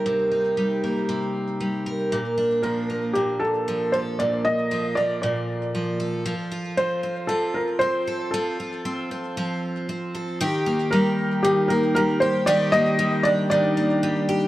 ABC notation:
X:1
M:4/4
L:1/8
Q:"Swing 16ths" 1/4=116
K:Eblyd
V:1 name="Felt piano"
z8 | z2 B2 G A2 c | d e2 d d3 z | z2 c2 A B c2 |
A6 z2 | z2 B2 G B B c | d e2 d d3 z |]
V:2 name="Twelve-string acoustic guitar"
[C,G,B,EB] E G, B, C,2 G, B | B,, D F, B, B,,2 F, A | B,,2 F, B, B,,2 F, A | F, F C C F,2 C A |
F, F C C F,2 C A | [E,G] B, G,2 E, B, G, G | [E,G] B, G, D E, B, G, G |]